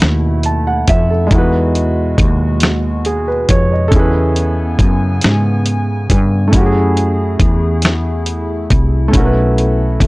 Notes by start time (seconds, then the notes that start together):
Already playing: B2 A3 C#4 E4 F#4 B4
0.02 D#2, snare
0.43 A5, closed hi-hat
0.67 F#5
0.87 F2 E5, kick, closed hi-hat
1.10 A4
1.27 G#3 D#4
1.31 E2 B2 G#3 E4 F#4, kick, closed hi-hat
1.35 F#4 B4
1.75 closed hi-hat
2.18 D#2, kick, closed hi-hat
2.60 snare, closed hi-hat
3.05 G#4, closed hi-hat
3.28 B4
3.49 F2 C#5, kick, closed hi-hat
3.72 D#5
3.88 C#3 B3 C#4 A4 G#5, kick, closed hi-hat
3.93 E2 E4 G#4
3.99 B4
4.36 closed hi-hat
4.79 F#2, kick, closed hi-hat
5.22 G#2, snare, closed hi-hat
5.66 closed hi-hat
6.10 G2, kick, closed hi-hat
6.48 A3 C#4
6.53 F#2 A3 E4 F#4 G#4, kick, closed hi-hat
6.60 G4
6.66 G#4
6.97 closed hi-hat
7.40 E2, kick, closed hi-hat
7.82 snare, closed hi-hat
8.26 closed hi-hat
8.70 C2, kick, closed hi-hat
9.08 A3 C#4
9.13 B1 B3 E4 F#4 A4, kick, closed hi-hat
9.19 A#4
9.26 B4
9.58 closed hi-hat
10.00 C#2, kick, closed hi-hat